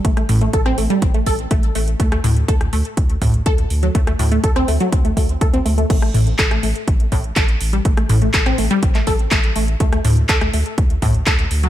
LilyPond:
<<
  \new Staff \with { instrumentName = "Synth pluck" } { \time 4/4 \key d \dorian \tempo 4 = 123 a16 a16 a,16 a16 a'16 c'16 a16 g16 r16 a16 a'16 r16 a16 r16 a16 r16 | a16 a16 a,16 r16 a'16 r16 a16 r8. a,16 r16 a'16 r8 fis16 | a16 a16 a,16 a16 a'16 c'16 a16 fis16 r16 a16 a16 r16 a'16 c'16 a16 a16 | a16 a16 a,16 r16 a'16 a16 a16 r8. a,16 r16 a'16 r8 g16 |
a16 a16 a,16 a16 a'16 c'16 a16 g16 r16 a16 a'16 r16 a16 r16 a16 r16 | a16 a16 a,16 r16 a'16 a16 a16 r8. a,16 r16 a'16 r8 fis16 | }
  \new Staff \with { instrumentName = "Sub bass" } { \clef bass \time 4/4 \key d \dorian a,,8 a,,8 a,,8 a,,8 a,,8 a,,8 a,,8 a,,8 | d,8 d,8 d,8 d,8 d,8 d,8 d,8 d,8 | d,8 d,8 d,8 d,8 d,8 d,8 d,8 d,8 | a,,8 a,,8 a,,8 a,,8 a,,8 a,,8 a,,8 a,,8 |
a,,8 a,,8 a,,8 a,,8 a,,8 a,,8 a,,8 a,,8 | d,8 d,8 d,8 d,8 d,8 d,8 d,8 d,8 | }
  \new DrumStaff \with { instrumentName = "Drums" } \drummode { \time 4/4 <hh bd>16 <hh ss>16 hho16 hh16 <hh bd>16 <hh ss>16 hho16 hh16 <hh bd>16 hh16 <hho bd>16 hh16 <hh bd>16 hh16 hho16 hh16 | <hh bd>16 <hh ss>16 hho16 hh16 <hh bd>16 <hh ss>16 hho16 hh16 <hh bd>16 hh16 <hho bd>16 hh16 <hh bd>16 hh16 hho16 hh16 | <hh bd>16 <hh ss>16 hho16 hh16 <hh bd>16 <hh ss>16 hho16 hh16 <hh bd>16 hh16 <hho bd>16 hh16 <hh bd>16 hh16 hho16 hh16 | <cymc hh bd>16 <hh ss>16 hho16 hh16 <hc hh bd>16 <hh ss>16 hho16 hh16 <hh bd>16 hh16 <hho bd>16 hh16 <hc hh bd>16 hh16 hho16 hh16 |
<hh bd>16 <hh ss>16 hho16 hh16 <hc hh bd>16 <hh ss>16 hho16 hh16 <hh bd>16 <hc hh>16 <hho bd>16 hh16 <hc hh bd>16 hh16 hho16 hh16 | <hh bd>16 <hh ss>16 hho16 hh16 <hc hh bd>16 <hh ss>16 hho16 hh16 <hh bd>16 hh16 <hho bd>16 hh16 <hc hh bd>16 hh16 hho16 hh16 | }
>>